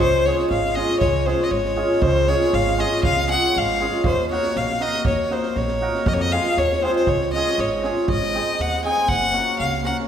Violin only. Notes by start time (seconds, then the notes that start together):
0.00 C5
0.26 C#5
0.51 F5
0.75 D#5
1.00 C#5
1.26 C5
1.44 D#5
1.51 C#5
2.02 C5
2.28 C#5
2.54 F5
2.80 D#5
3.04 F5
3.31 F#5
3.58 F5
4.06 C5
4.32 C#5
4.57 F5
4.82 D#5
5.07 C#5
5.33 C5
5.57 C#5
6.08 D#5
6.14 C#5
6.21 D#5
6.32 F5
6.59 C#5
6.83 C5
6.96 C5
7.09 C#5
7.34 D#5
7.60 C#5
8.11 D#5
8.61 F#5
8.85 G#5
9.08 F#5
9.59 F5
9.86 F#5